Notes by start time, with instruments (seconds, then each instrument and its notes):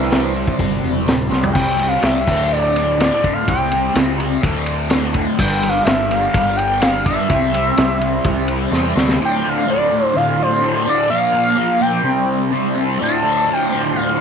Already playing: picked electric bass C2, tanpura D2 A2 D3, distorted electric guitar C3 G3 C4, harmonium E3 D4 A#4 E5
0.01 snare
0.09 harmonium C5, snare, open hi-hat, tambourine
0.23 tambourine
0.34 open hi-hat, tambourine
0.47 kick, tambourine
0.56 picked electric bass G1, tanpura D2, kick, open hi-hat, tambourine
0.71 tambourine
0.83 picked electric bass E1, open hi-hat, tambourine
0.95 tambourine
1.06 picked electric bass D1, snare, open hi-hat, tambourine
1.20 tanpura A2
1.29 picked electric bass C2, distorted electric guitar C3 G3 C4, snare, tambourine
1.41 floor tom, tambourine
1.53 picked electric bass C2, distorted electric guitar C3 G3 C4, analog synth lead G5, kick, crash
1.77 distorted electric guitar G3 C4, ride
1.88 analog synth lead F5
2.01 picked electric bass C2, distorted electric guitar C3 G3 C4, analog synth lead E5, snare, ride, tambourine
2.25 picked electric bass D2, distorted electric guitar D2 A2 D3, kick, crash
2.52 analog synth lead D5
2.76 ride
2.98 distorted electric guitar D2 A2 D3, analog synth lead D5, snare, ride, tambourine
3.13 snare
3.22 distorted electric guitar A2 D3, kick, ride
3.33 analog synth lead F5
3.46 picked electric bass C2, distorted electric guitar C3 G3 C4, analog synth lead G5, kick, ride
3.70 distorted electric guitar G3 C4, ride
3.94 picked electric bass C#2, distorted electric guitar C3 G3 C4, snare, ride, tambourine
4.18 distorted electric guitar G3 C4, ride
4.42 distorted electric guitar D2 A2 D3, picked electric bass D2, kick, ride
4.66 ride
4.90 distorted electric guitar D2 A2 D3, snare, ride, tambourine
5.03 snare
5.13 distorted electric guitar A2 D3, kick, ride
5.39 picked electric bass G1, distorted electric guitar G2 D3 G3, harmonium F4 G4 A#4, analog synth lead G5, kick, crash
5.62 distorted electric guitar D3 G3, ride
5.69 analog synth lead F5
5.84 picked electric bass G1, distorted electric guitar G2 D3, analog synth lead E5, snare, ride, tambourine
5.88 distorted electric guitar G3
6.08 distorted electric guitar G3, analog synth lead F5, ride
6.12 distorted electric guitar D3
6.34 picked electric bass G1, kick, ride
6.56 analog synth lead G5, ride
6.81 distorted electric guitar G2 D3 G3, analog synth lead F5, snare, ride, tambourine
7.05 distorted electric guitar D3 G3, analog synth lead E5, kick, ride
7.29 picked electric bass C2, distorted electric guitar C3 G3 C4, harmonium E4 C5, kick, ride
7.53 distorted electric guitar G3 C4, ride
7.76 picked electric bass C2, distorted electric guitar C3 G3 C4, snare, ride, tambourine
8.00 distorted electric guitar G3 C4, ride
8.24 picked electric bass C2, kick, ride
8.48 ride
8.72 picked electric bass E2, distorted electric guitar C3 G3 C4, snare, tambourine
8.95 picked electric bass D2, distorted electric guitar G3 C4, snare
9.09 snare
9.19 distorted electric guitar D2 A2 D3, harmonium D4 F4 C5
9.25 analog synth lead G5
9.43 distorted electric guitar A2 D3
9.49 analog synth lead F5
9.67 distorted electric guitar D2 A2 D3, analog synth lead D5
9.90 distorted electric guitar A2 D3
10.05 analog synth lead C5
10.14 distorted electric guitar D2 A2 D3, analog synth lead F5
10.42 analog synth lead C5
10.62 distorted electric guitar D2 A2 D3
10.86 distorted electric guitar A2 D3, analog synth lead D5
11.09 distorted electric guitar A#2 F3 A#3, analog synth lead F5
11.14 harmonium A#4
11.32 distorted electric guitar F3 A#3
11.56 distorted electric guitar A#2 F3 A#3
11.79 distorted electric guitar F3 A#3, analog synth lead G5
12.02 distorted electric guitar C3 G3 C4, harmonium E4
12.51 distorted electric guitar C3 G3 C4
12.75 distorted electric guitar G3 C4
12.99 distorted electric guitar D2 A2 D3, harmonium F4 C5
13.03 analog synth lead A5
13.23 distorted electric guitar A2 D3
13.47 distorted electric guitar D2 A2 D3
13.53 analog synth lead G5
13.71 distorted electric guitar A2 D3
13.94 distorted electric guitar D2 A2 D3, analog synth lead F5